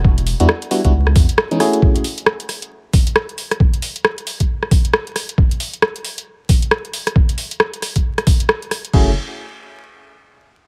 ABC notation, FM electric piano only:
X:1
M:4/4
L:1/16
Q:"Swing 16ths" 1/4=135
K:F#m
V:1 name="FM electric piano"
z3 [=G,B,DEF] z2 [G,B,DEF] [G,B,DEF] z4 z [E,^G,B,C^D] [A,CEFG]2- | [A,CEFG]2 z12 z2 | z16 | z16 |
z16 | [A,CEFG]2 z12 z2 |]